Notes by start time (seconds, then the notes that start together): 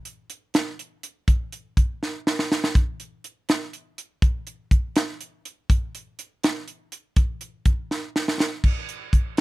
0.05 closed hi-hat
0.30 closed hi-hat
0.54 snare, closed hi-hat
0.79 closed hi-hat
1.03 closed hi-hat
1.28 kick, closed hi-hat
1.52 closed hi-hat
1.77 kick, closed hi-hat
2.03 snare
2.27 snare
2.39 snare
2.52 snare
2.64 snare
2.75 kick, closed hi-hat
3.00 closed hi-hat
3.24 closed hi-hat
3.49 snare, closed hi-hat
3.73 closed hi-hat
3.98 closed hi-hat
4.22 kick, closed hi-hat
4.47 closed hi-hat
4.71 kick, closed hi-hat
4.96 snare, closed hi-hat
5.21 closed hi-hat
5.45 closed hi-hat
5.70 kick, closed hi-hat
5.95 closed hi-hat
6.19 closed hi-hat
6.43 snare, closed hi-hat
6.68 closed hi-hat
6.92 closed hi-hat
7.16 kick, closed hi-hat
7.41 closed hi-hat
7.65 kick, closed hi-hat
7.91 snare
8.16 snare
8.28 snare
8.40 snare
8.64 kick, crash
8.89 closed hi-hat
9.13 kick, closed hi-hat
9.37 closed hi-hat